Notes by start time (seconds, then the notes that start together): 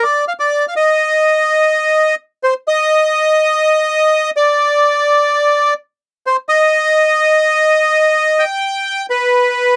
0.03 D5
0.28 F5
0.40 D5
0.68 F5
0.76 D#5
2.43 C5
2.68 D#5
4.37 D5
6.27 C5
6.49 D#5
8.39 G5
9.10 B4